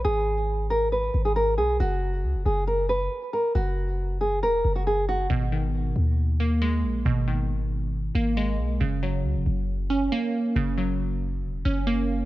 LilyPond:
<<
  \new Staff \with { instrumentName = "Nylon-string guitar" } { \time 4/4 \key fis \mixolydian \tempo 4 = 137 gis'4. ais'8 b'8. gis'16 ais'8 gis'8 | fis'4. gis'8 ais'8 b'4 ais'8 | fis'4. gis'8 ais'8. fis'16 gis'8 fis'8 | r1 |
r1 | r1 | r1 | }
  \new Staff \with { instrumentName = "Synth pluck" } { \clef bass \time 4/4 \key fis \mixolydian r1 | r1 | r1 | b,8 dis2 ais8 gis4 |
b,8 dis2 ais8 gis4 | cis8 fis2 cis'8 ais4 | cis8 fis2 cis'8 ais4 | }
  \new Staff \with { instrumentName = "808-style bass" } { \clef bass \time 4/4 \key fis \mixolydian gis,,2~ gis,,8 gis,,4 b,,8 | fis,,4 cis,16 fis,,16 fis,,4. r4 | fis,,2 e,,8 fis,,4. | gis,,4. dis,2 ais,,8 |
gis,,2~ gis,,8 gis,,4 b,,8 | fis,,4 cis,16 fis,,16 fis,,4. r4 | fis,,2 e,,8 fis,,4. | }
>>